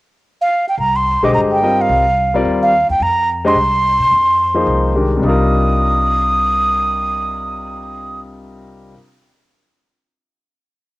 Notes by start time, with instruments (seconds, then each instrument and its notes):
0.41 flute F5
0.69 flute G5
0.78 upright bass C2, flute A#5
0.96 flute C6
1.22 upright bass B1, grand piano D3 G#3 G4 C5 D#5, flute D6
1.33 upright bass G1, flute A#5
1.52 flute G5
1.62 grand piano G3 C4 F4 A#4 D#5
1.81 flute F5
1.89 upright bass C2
2.34 grand piano G3 C4 F4 A#4 D5
2.45 upright bass D#2
2.62 flute F5
2.89 upright bass D#2, flute G5
3.00 upright bass F2, flute A#5
3.44 grand piano G#3 D4 G4 C5 D#5, flute C6
3.55 upright bass C2
3.99 upright bass C3
4.11 upright bass F2
4.54 grand piano F3 A#3 D#4 G#4 C5
4.67 upright bass C2
4.94 grand piano D#3 G#3 D4 G4 A#4
5.17 grand piano C3 G3
5.21 upright bass C2, grand piano D4 D#4, flute D#6
5.27 grand piano F4 A#4